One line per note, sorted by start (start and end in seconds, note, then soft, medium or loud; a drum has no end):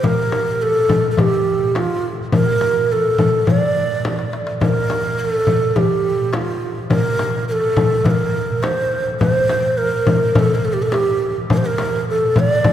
0.03 0.64 A#4 loud
0.03 darbuka dum medium
0.03 frame drum medium
0.32 frame drum medium
0.62 1.10 A4 medium
0.89 darbuka dum medium
0.89 frame drum medium
1.03 darbuka ka soft
1.11 1.21 A4 medium
1.17 1.78 G4 medium
1.17 darbuka dum medium
1.17 frame drum medium
1.75 2.12 F4 medium
1.75 darbuka tek medium
1.75 frame drum medium
2.32 2.94 A#4 medium
2.32 frame drum medium
2.32 darbuka dum medium
2.61 darbuka tek medium
2.61 frame drum medium
2.90 3.52 A4 medium
2.90 darbuka ka soft
3.18 frame drum medium
3.18 darbuka dum medium
3.33 darbuka ka soft
3.47 4.34 D5 medium
3.47 frame drum medium
3.47 darbuka dum medium
3.77 darbuka ka soft
4.05 darbuka tek soft
4.05 frame drum medium
4.19 darbuka ka medium
4.33 darbuka tek medium
4.47 darbuka ka medium
4.61 5.21 A#4 medium
4.61 darbuka dum medium
4.61 frame drum medium
4.90 darbuka tek medium
4.90 frame drum medium
5.20 5.78 A4 medium
5.47 frame drum medium
5.47 darbuka dum medium
5.63 darbuka ka soft
5.76 6.36 G4 medium
5.76 frame drum medium
5.76 darbuka dum medium
6.33 6.77 F4 medium
6.33 darbuka tek medium
6.33 frame drum medium
6.90 7.45 A#4 medium
6.90 darbuka dum medium
6.90 frame drum medium
7.19 darbuka tek medium
7.19 frame drum medium
7.48 8.07 A4 medium
7.48 7.53 A#4 medium
7.76 frame drum medium
7.76 darbuka dum medium
7.92 darbuka ka soft
8.04 8.12 B4 medium
8.04 darbuka dum medium
8.04 frame drum medium
8.11 8.65 A#4 medium
8.63 9.06 C5 medium
8.63 darbuka tek medium
8.63 frame drum medium
9.20 9.79 C5 loud
9.20 darbuka dum medium
9.20 frame drum medium
9.49 darbuka tek medium
9.49 frame drum medium
9.78 10.36 A#4 medium
10.07 frame drum medium
10.07 darbuka dum medium
10.22 darbuka ka soft
10.35 10.56 A4 medium
10.35 10.40 A#4 medium
10.35 frame drum medium
10.35 darbuka dum medium
10.55 10.67 A#4 medium
10.65 10.75 A4 medium
10.73 10.84 G4 medium
10.82 10.94 A4 medium
10.92 11.36 G4 medium
10.92 darbuka tek medium
10.92 frame drum medium
11.50 11.59 A#4 medium
11.50 frame drum medium
11.50 darbuka dum medium
11.57 11.67 C5 medium
11.66 12.08 A#4 loud
11.78 darbuka tek medium
11.78 frame drum medium
12.09 12.41 A4 medium
12.36 12.73 D5 loud
12.36 frame drum medium
12.36 darbuka dum medium
12.64 frame drum medium
12.64 darbuka dum medium